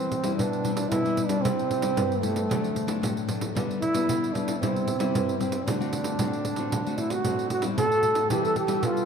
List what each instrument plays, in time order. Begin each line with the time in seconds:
Already playing: nylon-string guitar E3 G3 C4 E4, trombone C4
0.00 pandeiro
0.12 pandeiro
0.24 nylon-string guitar G3 D4 E4, pandeiro
0.36 nylon-string guitar B2, trombone D4, pandeiro
0.53 pandeiro
0.64 nylon-string guitar G3 D4 E4, pandeiro
0.74 trombone D4, pandeiro
0.89 nylon-string guitar B2, trombone E4, pandeiro
1.05 nylon-string guitar G3 D4 E4, pandeiro
1.17 pandeiro
1.26 nylon-string guitar G3 E4, trombone D4, pandeiro
1.42 nylon-string guitar C3, trombone C4, pandeiro
1.59 pandeiro
1.71 pandeiro
1.82 nylon-string guitar G3 E4, pandeiro
1.97 nylon-string guitar G2, pandeiro
2.12 pandeiro
2.20 nylon-string guitar G3 B3 E4, trombone A3, pandeiro
2.36 pandeiro
2.49 nylon-string guitar D3 F#3 A3 D4, pandeiro
2.64 pandeiro
2.76 pandeiro
2.87 nylon-string guitar F#3 A3 D4, pandeiro
3.02 nylon-string guitar A2, pandeiro
3.17 pandeiro
3.27 nylon-string guitar F#3 A3 D4, pandeiro
3.41 pandeiro
3.55 nylon-string guitar D3 G3 B3 D4, pandeiro
3.71 pandeiro
3.81 trombone E4, pandeiro
3.93 nylon-string guitar G3 B3 D4, pandeiro
4.08 nylon-string guitar D3, pandeiro
4.24 pandeiro
4.33 nylon-string guitar G3 B3 D4, trombone D4, pandeiro
4.48 pandeiro
4.60 nylon-string guitar C3 G3 C4 E4, trombone C4, pandeiro
4.76 pandeiro
4.88 pandeiro
4.99 nylon-string guitar G3 C4 E4, pandeiro
5.14 nylon-string guitar G2, pandeiro
5.29 pandeiro
5.39 nylon-string guitar G3 C4 E4, trombone C4, pandeiro
5.52 pandeiro
5.66 nylon-string guitar D3 A3 C4 F#4, trombone D4, pandeiro
5.80 nylon-string guitar A3 C4 F#4, pandeiro
5.93 pandeiro
6.04 pandeiro
6.19 nylon-string guitar A2 A3 C4 F#4, pandeiro
6.33 pandeiro
6.45 pandeiro
6.56 nylon-string guitar A3 C4 F#4, pandeiro
6.72 nylon-string guitar D3, pandeiro
6.86 nylon-string guitar A3 C4 F#4, pandeiro
6.98 trombone E4, pandeiro
7.10 trombone F#4, pandeiro
7.25 nylon-string guitar A2 A3 C4 F#4, pandeiro
7.39 pandeiro
7.50 trombone F#4, pandeiro
7.62 nylon-string guitar G3 C4 E4, pandeiro
7.78 nylon-string guitar A2, trombone A4, pandeiro
7.92 pandeiro
8.03 pandeiro
8.15 pandeiro
8.30 nylon-string guitar E3 G3 C4 E4, trombone G4, pandeiro
8.45 trombone A4, pandeiro
8.56 trombone G4, pandeiro
8.67 nylon-string guitar G3 D4 F4, pandeiro
8.83 nylon-string guitar B2, trombone F4, pandeiro
8.97 pandeiro